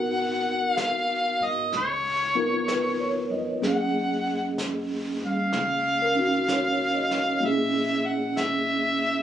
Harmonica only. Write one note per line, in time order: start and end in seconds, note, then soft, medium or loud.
0.00 0.71 F#5 medium
0.71 1.46 F5 medium
1.44 1.75 D#5 medium
1.77 3.28 C#5 medium
3.67 4.56 F#5 medium
5.25 7.46 F5 medium
7.45 8.08 E5 medium
8.06 8.40 F#5 medium
8.38 9.22 E5 medium